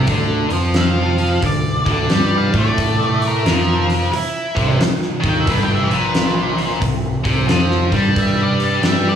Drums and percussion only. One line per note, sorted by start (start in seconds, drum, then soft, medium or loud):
0.07 kick medium
0.07 open hi-hat medium
0.50 open hi-hat soft
0.74 snare loud
0.74 open hi-hat medium
1.18 open hi-hat soft
1.42 kick medium
1.42 open hi-hat medium
1.86 kick loud
1.86 open hi-hat soft
2.10 snare loud
2.10 open hi-hat medium
2.54 kick medium
2.54 open hi-hat soft
2.78 kick medium
2.78 open hi-hat medium
3.22 open hi-hat soft
3.46 snare loud
3.46 open hi-hat medium
3.90 open hi-hat soft
4.14 open hi-hat medium
4.57 kick medium
4.57 open hi-hat soft
4.81 snare medium
4.81 open hi-hat medium
5.02 snare soft
5.23 kick medium
5.23 open hi-hat soft
5.47 kick loud
5.47 open hi-hat medium
5.91 open hi-hat soft
6.15 snare loud
6.15 open hi-hat medium
6.58 open hi-hat soft
6.82 kick loud
6.82 open hi-hat medium
7.25 kick medium
7.25 open hi-hat soft
7.49 snare loud
7.49 open hi-hat medium
7.71 snare soft
7.92 kick medium
7.92 open hi-hat soft
8.16 kick medium
8.16 open hi-hat medium
8.60 open hi-hat soft
8.83 snare medium
8.83 open hi-hat medium